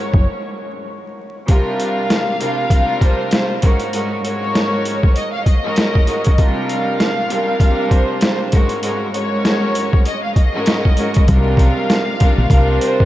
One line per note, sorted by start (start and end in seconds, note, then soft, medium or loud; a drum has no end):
0.00 0.26 G#2 loud
0.00 0.26 G#3 loud
0.00 0.26 C#4 medium
0.00 0.26 F#4 loud
0.00 0.26 A#4 loud
0.00 0.22 C#5 medium
0.14 0.25 F#1 medium
0.14 kick loud
1.48 2.34 C3 loud
1.48 2.34 G3 medium
1.48 2.34 D4 medium
1.48 2.34 F4 medium
1.48 2.34 A#4 loud
1.48 kick loud
1.48 closed hi-hat medium
1.79 2.97 F5 medium
1.79 closed hi-hat medium
2.10 snare loud
2.10 closed hi-hat medium
2.40 2.69 C3 medium
2.40 2.69 G3 medium
2.40 2.69 D4 medium
2.40 2.69 F4 medium
2.40 2.69 A#4 medium
2.40 closed hi-hat medium
2.70 3.57 C3 loud
2.70 3.57 G3 medium
2.70 3.57 D4 medium
2.70 3.57 F4 medium
2.70 3.57 A#4 loud
2.70 kick loud
2.70 closed hi-hat medium
3.01 3.29 C5 medium
3.01 kick medium
3.01 closed hi-hat medium
3.31 3.60 C5 medium
3.31 snare loud
3.31 closed hi-hat medium
3.62 3.91 G#2 medium
3.62 3.91 G#3 medium
3.62 3.92 C#4 medium
3.62 3.92 F#4 medium
3.62 3.92 A#4 loud
3.62 kick loud
3.62 closed hi-hat medium
3.80 closed hi-hat medium
3.93 4.22 G#2 medium
3.93 4.22 G#3 medium
3.93 4.22 C#4 medium
3.93 4.22 F#4 medium
3.93 4.22 A#4 loud
3.93 closed hi-hat medium
4.23 5.51 G#2 loud
4.23 5.51 G#3 medium
4.23 5.51 C#4 medium
4.23 5.51 F#4 medium
4.23 5.52 A#4 loud
4.23 5.12 C#5 medium
4.23 closed hi-hat medium
4.55 snare loud
4.55 closed hi-hat medium
4.85 closed hi-hat medium
5.03 kick loud
5.16 5.32 D#5 medium
5.16 closed hi-hat medium
5.33 5.45 F5 medium
5.46 6.34 D#5 medium
5.46 kick medium
5.46 closed hi-hat medium
5.64 6.04 G#2 loud
5.64 6.05 G#3 medium
5.64 6.05 C#4 medium
5.64 6.05 F#4 medium
5.64 6.05 A#4 loud
5.76 snare loud
5.76 closed hi-hat medium
5.95 kick medium
6.07 6.36 G#2 medium
6.07 6.36 G#3 medium
6.07 6.36 C#4 medium
6.07 6.36 F#4 medium
6.07 6.37 A#4 medium
6.07 closed hi-hat medium
6.24 kick medium
6.24 closed hi-hat medium
6.38 7.24 C3 loud
6.38 7.24 G3 medium
6.38 7.24 D4 medium
6.38 7.24 F4 medium
6.38 7.24 A#4 loud
6.38 kick loud
6.38 closed hi-hat medium
6.68 7.87 F5 medium
6.68 closed hi-hat medium
7.00 snare loud
7.00 closed hi-hat medium
7.29 7.58 C3 medium
7.29 7.58 G3 medium
7.29 7.59 D4 medium
7.29 7.59 F4 medium
7.29 7.59 A#4 medium
7.29 closed hi-hat medium
7.60 8.46 C3 loud
7.60 8.46 G3 medium
7.60 8.47 D4 loud
7.60 8.47 F4 medium
7.60 8.47 A#4 loud
7.60 kick loud
7.60 closed hi-hat medium
7.91 8.19 C5 medium
7.91 kick medium
7.91 closed hi-hat medium
8.21 8.50 C5 medium
8.21 snare loud
8.21 closed hi-hat medium
8.52 8.81 G#2 medium
8.52 8.81 G#3 medium
8.52 8.81 C#4 medium
8.52 8.81 F#4 medium
8.52 8.82 A#4 medium
8.52 kick medium
8.52 closed hi-hat medium
8.69 closed hi-hat medium
8.82 9.11 G#2 medium
8.82 9.12 G#3 medium
8.82 9.12 C#4 medium
8.82 9.12 F#4 medium
8.82 9.12 A#4 loud
8.82 closed hi-hat medium
9.13 10.41 G#2 loud
9.13 10.41 G#3 medium
9.13 10.41 C#4 medium
9.13 10.41 F#4 medium
9.13 10.41 A#4 loud
9.13 10.02 C#5 medium
9.13 closed hi-hat medium
9.45 snare loud
9.45 closed hi-hat medium
9.75 closed hi-hat medium
9.93 kick medium
10.05 10.22 D#5 medium
10.05 closed hi-hat medium
10.23 10.35 F5 medium
10.36 11.24 D#5 medium
10.36 kick medium
10.36 closed hi-hat medium
10.53 10.94 G#2 loud
10.53 10.94 G#3 medium
10.53 10.95 C#4 medium
10.53 10.95 F#4 medium
10.53 10.95 A#4 loud
10.66 snare loud
10.66 closed hi-hat medium
10.85 kick medium
10.97 11.26 G#2 medium
10.97 11.26 G#3 medium
10.97 11.26 C#4 medium
10.97 11.26 F#4 medium
10.97 11.26 A#4 medium
10.97 closed hi-hat medium
11.14 kick medium
11.14 closed hi-hat medium
11.28 11.72 C2 loud
11.28 12.14 C3 loud
11.28 12.14 G3 medium
11.28 12.14 D4 medium
11.28 12.14 F4 loud
11.28 12.14 A#4 loud
11.28 kick loud
11.28 closed hi-hat medium
11.57 12.77 F5 medium
11.57 kick medium
11.57 closed hi-hat medium
11.90 snare loud
11.90 closed hi-hat medium
12.20 12.48 C3 medium
12.20 12.49 G3 medium
12.20 12.49 D4 medium
12.20 12.49 F4 medium
12.20 12.49 A#4 loud
12.20 kick loud
12.20 closed hi-hat medium
12.38 12.50 A#1 medium
12.50 12.78 C2 loud
12.50 13.05 C3 loud
12.50 13.05 G3 medium
12.50 13.05 D4 loud
12.50 13.05 F4 medium
12.50 13.05 A#4 loud
12.50 kick loud
12.50 closed hi-hat loud
12.81 13.05 C5 medium
12.81 closed hi-hat medium
13.00 kick medium